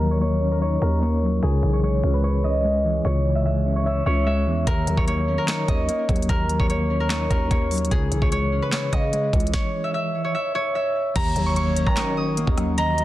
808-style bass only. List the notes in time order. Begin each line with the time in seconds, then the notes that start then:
Already playing: D#2
0.82 D#2
1.43 C#2
1.63 B1
2.04 C#2
3.05 C#2
4.06 C#2
4.47 E2
4.67 D#2
4.87 D#2
4.98 D#2
5.28 E2
5.68 D#2
6.09 D#2
6.29 D#2
6.60 D#2
7.31 D#2
7.51 D#2
7.91 C#2
8.12 B1
8.22 C#2
8.93 C#3
9.33 C#2
11.16 D#2
11.36 D#2
11.87 D#3
12.47 D#2